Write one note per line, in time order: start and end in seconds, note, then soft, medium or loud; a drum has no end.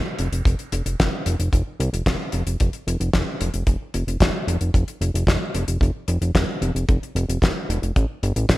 0.19 0.29 F1 medium
0.19 closed hi-hat medium
0.32 0.42 F1 medium
0.32 closed hi-hat medium
0.45 0.56 F1 loud
0.45 kick loud
0.45 closed hi-hat medium
0.59 closed hi-hat soft
0.72 0.82 F1 medium
0.72 closed hi-hat medium
0.86 0.96 F1 medium
0.86 closed hi-hat medium
1.00 1.10 F1 medium
1.00 kick loud
1.00 snare loud
1.00 closed hi-hat medium
1.26 1.36 F1 medium
1.26 closed hi-hat medium
1.40 1.50 F1 medium
1.40 closed hi-hat medium
1.53 1.63 F1 medium
1.53 kick loud
1.53 closed hi-hat medium
1.80 1.90 C2 medium
1.80 closed hi-hat medium
1.93 2.03 F1 medium
1.93 closed hi-hat medium
2.06 2.16 F1 loud
2.06 kick loud
2.06 snare loud
2.06 closed hi-hat medium
2.32 2.43 F1 medium
2.32 closed hi-hat medium
2.47 2.57 F1 medium
2.47 closed hi-hat medium
2.60 2.70 F1 loud
2.60 kick loud
2.60 closed hi-hat medium
2.73 closed hi-hat medium
2.87 2.97 F1 medium
2.87 closed hi-hat medium
3.00 3.10 F1 medium
3.00 closed hi-hat medium
3.13 3.24 F1 loud
3.13 kick loud
3.13 snare loud
3.13 closed hi-hat medium
3.41 3.51 F1 medium
3.41 closed hi-hat medium
3.54 3.64 F1 medium
3.54 closed hi-hat medium
3.67 3.77 F1 medium
3.67 kick loud
3.67 closed hi-hat medium
3.94 4.04 F1 medium
3.94 closed hi-hat medium
4.07 4.17 F1 medium
4.07 closed hi-hat medium
4.20 4.31 F1 loud
4.20 kick loud
4.20 snare loud
4.20 closed hi-hat medium
4.47 4.57 F1 medium
4.47 closed hi-hat medium
4.61 4.71 F1 medium
4.61 closed hi-hat medium
4.74 4.84 F1 loud
4.74 kick loud
4.74 closed hi-hat medium
4.88 closed hi-hat medium
5.01 5.11 F1 medium
5.01 closed hi-hat medium
5.14 5.24 F1 medium
5.14 closed hi-hat medium
5.27 5.37 F1 loud
5.27 kick loud
5.27 snare loud
5.27 closed hi-hat medium
5.55 5.65 F1 medium
5.55 closed hi-hat medium
5.68 5.78 F1 medium
5.68 closed hi-hat medium
5.81 5.91 F1 loud
5.81 kick loud
5.81 closed hi-hat medium
6.08 6.18 F1 medium
6.08 closed hi-hat medium
6.21 6.32 F1 medium
6.21 closed hi-hat medium
6.35 6.45 F1 loud
6.35 kick loud
6.35 snare loud
6.35 closed hi-hat medium
6.62 6.72 F1 medium
6.62 closed hi-hat medium
6.75 6.85 F1 medium
6.75 closed hi-hat medium
6.89 6.99 F1 loud
6.89 kick loud
6.89 closed hi-hat medium
7.03 closed hi-hat soft
7.15 7.25 F1 medium
7.15 closed hi-hat medium
7.29 7.39 F1 medium
7.29 closed hi-hat medium
7.42 7.52 F1 loud
7.42 kick loud
7.42 snare loud
7.42 closed hi-hat medium
7.69 7.79 F1 medium
7.69 closed hi-hat medium
7.82 7.92 F1 medium
7.82 closed hi-hat medium
7.96 8.06 A1 loud
7.96 kick loud
7.96 closed hi-hat medium
8.23 8.33 G1 medium
8.23 closed hi-hat medium
8.36 8.46 A1 medium
8.36 closed hi-hat medium
8.49 8.58 A1 loud
8.49 kick loud
8.49 snare loud
8.49 closed hi-hat medium